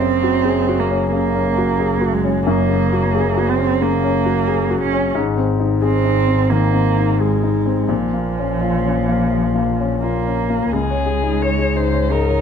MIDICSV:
0, 0, Header, 1, 5, 480
1, 0, Start_track
1, 0, Key_signature, -5, "major"
1, 0, Tempo, 672646
1, 1760, Time_signature, 4, 2, 24, 8
1, 4646, Tempo, 699301
1, 8697, End_track
2, 0, Start_track
2, 0, Title_t, "Violin"
2, 0, Program_c, 0, 40
2, 7538, Note_on_c, 0, 68, 50
2, 8015, Note_on_c, 0, 73, 53
2, 8026, Note_off_c, 0, 68, 0
2, 8250, Note_on_c, 0, 72, 54
2, 8261, Note_off_c, 0, 73, 0
2, 8492, Note_on_c, 0, 70, 51
2, 8502, Note_off_c, 0, 72, 0
2, 8697, Note_off_c, 0, 70, 0
2, 8697, End_track
3, 0, Start_track
3, 0, Title_t, "Upright piano"
3, 0, Program_c, 1, 0
3, 0, Control_c, 1, 64, 127
3, 0, Note_on_c, 1, 42, 51
3, 8, Note_on_c, 1, 49, 37
3, 164, Note_on_c, 1, 66, 39
3, 262, Note_off_c, 1, 49, 0
3, 318, Note_on_c, 1, 68, 44
3, 421, Note_off_c, 1, 66, 0
3, 488, Note_on_c, 1, 66, 43
3, 577, Note_off_c, 1, 68, 0
3, 647, Note_on_c, 1, 61, 38
3, 741, Note_off_c, 1, 66, 0
3, 771, Note_off_c, 1, 42, 0
3, 803, Note_on_c, 1, 49, 44
3, 900, Note_off_c, 1, 61, 0
3, 966, Note_on_c, 1, 61, 43
3, 1057, Note_off_c, 1, 49, 0
3, 1122, Note_on_c, 1, 66, 43
3, 1218, Note_off_c, 1, 61, 0
3, 1281, Note_on_c, 1, 68, 47
3, 1376, Note_off_c, 1, 66, 0
3, 1434, Note_on_c, 1, 66, 42
3, 1536, Note_off_c, 1, 68, 0
3, 1598, Note_on_c, 1, 61, 42
3, 1693, Note_off_c, 1, 66, 0
3, 1759, Note_on_c, 1, 42, 56
3, 1773, Control_c, 1, 64, 0
3, 1855, Note_off_c, 1, 61, 0
3, 1902, Control_c, 1, 64, 127
3, 1920, Note_on_c, 1, 49, 42
3, 2086, Note_on_c, 1, 66, 41
3, 2177, Note_off_c, 1, 49, 0
3, 2246, Note_on_c, 1, 68, 47
3, 2340, Note_off_c, 1, 66, 0
3, 2402, Note_on_c, 1, 66, 42
3, 2499, Note_off_c, 1, 68, 0
3, 2564, Note_on_c, 1, 61, 42
3, 2657, Note_off_c, 1, 66, 0
3, 2691, Note_off_c, 1, 42, 0
3, 2717, Note_on_c, 1, 49, 43
3, 2817, Note_off_c, 1, 61, 0
3, 2879, Note_on_c, 1, 61, 42
3, 2973, Note_off_c, 1, 49, 0
3, 3035, Note_on_c, 1, 66, 41
3, 3133, Note_off_c, 1, 61, 0
3, 3195, Note_on_c, 1, 68, 48
3, 3290, Note_off_c, 1, 66, 0
3, 3355, Note_on_c, 1, 66, 42
3, 3451, Note_off_c, 1, 68, 0
3, 3518, Note_on_c, 1, 61, 45
3, 3611, Note_off_c, 1, 66, 0
3, 3674, Note_on_c, 1, 44, 57
3, 3677, Note_off_c, 1, 61, 0
3, 3689, Control_c, 1, 64, 0
3, 3814, Control_c, 1, 64, 127
3, 3833, Note_on_c, 1, 60, 41
3, 3993, Note_on_c, 1, 63, 41
3, 4091, Note_off_c, 1, 60, 0
3, 4153, Note_on_c, 1, 68, 45
3, 4252, Note_off_c, 1, 63, 0
3, 4316, Note_on_c, 1, 63, 39
3, 4414, Note_off_c, 1, 68, 0
3, 4477, Note_on_c, 1, 60, 37
3, 4578, Note_off_c, 1, 63, 0
3, 4615, Note_off_c, 1, 44, 0
3, 4644, Note_on_c, 1, 51, 44
3, 4738, Note_off_c, 1, 60, 0
3, 4799, Note_on_c, 1, 60, 41
3, 4898, Note_off_c, 1, 51, 0
3, 4959, Note_on_c, 1, 63, 39
3, 5055, Note_off_c, 1, 60, 0
3, 5122, Note_on_c, 1, 68, 40
3, 5214, Note_off_c, 1, 63, 0
3, 5278, Note_on_c, 1, 63, 39
3, 5375, Note_off_c, 1, 68, 0
3, 5434, Note_on_c, 1, 60, 39
3, 5534, Note_off_c, 1, 63, 0
3, 5589, Note_on_c, 1, 46, 49
3, 5596, Note_off_c, 1, 60, 0
3, 5610, Control_c, 1, 64, 0
3, 5707, Control_c, 1, 64, 127
3, 5762, Note_on_c, 1, 58, 35
3, 5933, Note_on_c, 1, 61, 36
3, 6018, Note_off_c, 1, 58, 0
3, 6088, Note_on_c, 1, 65, 39
3, 6185, Note_off_c, 1, 61, 0
3, 6250, Note_on_c, 1, 61, 37
3, 6343, Note_off_c, 1, 65, 0
3, 6412, Note_on_c, 1, 58, 35
3, 6504, Note_off_c, 1, 61, 0
3, 6534, Note_off_c, 1, 46, 0
3, 6572, Note_on_c, 1, 53, 35
3, 6667, Note_off_c, 1, 58, 0
3, 6730, Note_on_c, 1, 58, 32
3, 6831, Note_off_c, 1, 53, 0
3, 6903, Note_on_c, 1, 61, 34
3, 6993, Note_off_c, 1, 58, 0
3, 7060, Note_on_c, 1, 65, 37
3, 7160, Note_off_c, 1, 61, 0
3, 7224, Note_on_c, 1, 61, 34
3, 7318, Note_off_c, 1, 65, 0
3, 7383, Note_on_c, 1, 58, 35
3, 7479, Note_off_c, 1, 61, 0
3, 7539, Note_on_c, 1, 37, 45
3, 7540, Note_off_c, 1, 58, 0
3, 7553, Control_c, 1, 64, 0
3, 7662, Note_on_c, 1, 73, 38
3, 7678, Control_c, 1, 64, 127
3, 7769, Note_on_c, 1, 68, 42
3, 7847, Note_off_c, 1, 73, 0
3, 7885, Note_on_c, 1, 63, 38
3, 7960, Note_off_c, 1, 68, 0
3, 8016, Note_on_c, 1, 73, 42
3, 8077, Note_off_c, 1, 63, 0
3, 8128, Note_on_c, 1, 68, 39
3, 8204, Note_off_c, 1, 73, 0
3, 8248, Note_on_c, 1, 63, 38
3, 8321, Note_off_c, 1, 68, 0
3, 8366, Note_on_c, 1, 73, 40
3, 8441, Note_off_c, 1, 63, 0
3, 8462, Note_off_c, 1, 37, 0
3, 8488, Note_on_c, 1, 44, 39
3, 8559, Note_off_c, 1, 73, 0
3, 8609, Note_on_c, 1, 73, 42
3, 8678, Note_off_c, 1, 44, 0
3, 8697, Note_off_c, 1, 73, 0
3, 8697, End_track
4, 0, Start_track
4, 0, Title_t, "Cello"
4, 0, Program_c, 2, 42
4, 0, Note_on_c, 2, 60, 81
4, 567, Note_on_c, 2, 58, 60
4, 578, Note_off_c, 2, 60, 0
4, 795, Note_off_c, 2, 58, 0
4, 800, Note_on_c, 2, 58, 75
4, 1523, Note_on_c, 2, 56, 72
4, 1534, Note_off_c, 2, 58, 0
4, 1758, Note_off_c, 2, 56, 0
4, 1763, Note_on_c, 2, 58, 76
4, 2491, Note_on_c, 2, 60, 72
4, 2502, Note_off_c, 2, 58, 0
4, 2726, Note_on_c, 2, 58, 72
4, 2736, Note_off_c, 2, 60, 0
4, 3435, Note_off_c, 2, 58, 0
4, 3440, Note_on_c, 2, 61, 68
4, 3673, Note_off_c, 2, 61, 0
4, 4167, Note_on_c, 2, 60, 80
4, 4641, Note_on_c, 2, 58, 75
4, 4652, Note_off_c, 2, 60, 0
4, 5121, Note_on_c, 2, 56, 63
4, 5131, Note_off_c, 2, 58, 0
4, 5591, Note_on_c, 2, 53, 63
4, 5601, Note_off_c, 2, 56, 0
4, 7052, Note_off_c, 2, 53, 0
4, 7056, Note_on_c, 2, 58, 59
4, 7546, Note_on_c, 2, 56, 59
4, 7556, Note_off_c, 2, 58, 0
4, 8495, Note_on_c, 2, 63, 76
4, 8505, Note_off_c, 2, 56, 0
4, 8697, Note_off_c, 2, 63, 0
4, 8697, End_track
5, 0, Start_track
5, 0, Title_t, "Double bass"
5, 0, Program_c, 3, 43
5, 0, Note_on_c, 3, 30, 51
5, 3672, Note_on_c, 3, 32, 60
5, 3683, Note_off_c, 3, 30, 0
5, 5594, Note_on_c, 3, 34, 48
5, 5605, Note_off_c, 3, 32, 0
5, 7534, Note_off_c, 3, 34, 0
5, 7538, Note_on_c, 3, 37, 48
5, 8697, Note_off_c, 3, 37, 0
5, 8697, End_track
0, 0, End_of_file